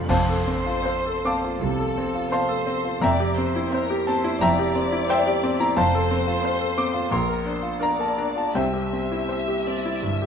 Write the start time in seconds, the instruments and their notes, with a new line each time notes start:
Already playing: grand piano C3 C4 F4 A4 C5
0.09 double bass section F1, cello section F2, grand piano F2 C5 F5 A5, violin section C5, concert bass drum, crash
0.29 grand piano A4
0.47 grand piano C4
0.66 grand piano F4
0.85 viola section C4 C5, grand piano C5, violin section F5
1.06 grand piano A4
1.25 grand piano C4 F5 A5 D6
1.44 grand piano F4
1.61 cello section C2, double bass section C2, grand piano C3, violin section A4
1.79 grand piano A4
1.98 grand piano C4
2.15 grand piano F4
2.31 viola section C4 C5, violin section C5 F5, grand piano C5 F5 A5 C6
2.49 grand piano A4
2.67 grand piano C4
2.85 grand piano F4
3.01 double bass section F1, cello section F2, grand piano F2 E5 G5 A#5, violin section D5
3.20 grand piano G4
3.37 grand piano C4, violin section C5
3.56 grand piano E4
3.70 viola section C4 C5, violin section A#4 E5
3.74 grand piano C5
3.90 grand piano G4
4.07 grand piano C4 A5, violin section C5
4.24 grand piano E4
4.41 double bass section F1, cello section F2, grand piano F2 E5 G5 A#5, violin section D5
4.59 grand piano G4
4.75 grand piano C4
4.92 grand piano E4
5.09 viola section C4 C5, grand piano C5 E5 G5, violin section E5
5.27 grand piano G4
5.43 grand piano C4
5.60 grand piano E4 A#5
5.77 double bass section F1, grand piano F2 C5 F5 A5, cello section F2, violin section C5
5.95 grand piano A4
6.11 grand piano C4
6.27 grand piano F4
6.43 viola section C4 C5, grand piano C5, violin section F5
6.61 grand piano A4
6.78 grand piano C4 D6
6.94 grand piano F4
7.11 grand piano A#1 C6, double bass section A#1, cello section A#2, violin section A#4
7.29 grand piano A#4
7.45 grand piano D4, violin section C5
7.62 grand piano F4
7.81 viola section D4 A#4, grand piano D5 A#5, violin section D5 F5
7.99 grand piano A#4 A5
8.18 grand piano D4 A#5
8.36 grand piano F4 A5
8.55 grand piano C2 C5 E5 G5, double bass section C2, cello section C3, violin section E5
8.73 grand piano G4
8.93 grand piano C4
9.12 grand piano E4
9.29 viola section C4 G4, grand piano C5, violin section E5
9.48 grand piano G4
9.67 grand piano C4, violin section D5
9.86 grand piano E4
10.03 double bass section G1, grand piano G2, cello section G2, violin section E5
10.22 grand piano G4